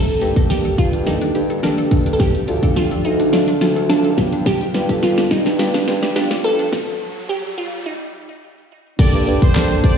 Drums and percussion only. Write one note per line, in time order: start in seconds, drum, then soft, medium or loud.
0.08 closed hi-hat medium
0.21 closed hi-hat medium
0.36 kick medium
0.36 closed hi-hat medium
0.50 snare medium
0.50 closed hi-hat medium
0.65 closed hi-hat soft
0.78 kick medium
0.78 closed hi-hat medium
0.93 closed hi-hat medium
1.07 snare medium
1.07 closed hi-hat medium
1.21 closed hi-hat soft
1.35 closed hi-hat medium
1.50 closed hi-hat soft
1.63 snare medium
1.63 closed hi-hat medium
1.78 closed hi-hat medium
1.91 kick loud
1.91 closed hi-hat medium
2.06 closed hi-hat medium
2.20 kick loud
2.20 snare medium
2.20 closed hi-hat medium
2.35 closed hi-hat medium
2.48 closed hi-hat medium
2.63 kick medium
2.63 closed hi-hat medium
2.76 snare medium
2.76 closed hi-hat loud
2.91 closed hi-hat soft
3.05 closed hi-hat medium
3.20 closed hi-hat medium
3.33 snare medium
3.33 closed hi-hat medium
3.48 closed hi-hat medium
3.61 snare medium
3.61 closed hi-hat medium
3.76 closed hi-hat soft
3.90 snare medium
3.90 closed hi-hat loud
4.04 closed hi-hat medium
4.18 kick loud
4.18 snare medium
4.18 closed hi-hat medium
4.33 closed hi-hat medium
4.46 kick loud
4.46 snare loud
4.46 closed hi-hat loud
4.61 closed hi-hat medium
4.74 snare loud
4.74 closed hi-hat medium
4.89 kick loud
4.89 closed hi-hat medium
5.03 snare loud
5.03 closed hi-hat loud
5.18 snare loud
5.18 closed hi-hat medium
5.31 kick medium
5.31 snare loud
5.31 closed hi-hat medium
5.46 snare loud
5.46 closed hi-hat medium
5.59 snare loud
5.59 closed hi-hat medium
5.74 snare loud
5.74 closed hi-hat medium
5.88 snare loud
5.88 closed hi-hat medium
6.03 snare loud
6.03 closed hi-hat soft
6.16 snare loud
6.16 closed hi-hat loud
6.31 snare loud
6.31 closed hi-hat medium
6.44 closed hi-hat medium
6.59 closed hi-hat medium
6.73 kick loud
6.73 snare medium
8.99 kick loud
8.99 closed hi-hat loud
8.99 crash loud
9.14 closed hi-hat medium
9.27 closed hi-hat medium
9.42 kick loud
9.42 closed hi-hat medium
9.55 snare loud
9.55 clap loud
9.55 closed hi-hat loud
9.71 closed hi-hat medium
9.84 kick medium
9.84 closed hi-hat medium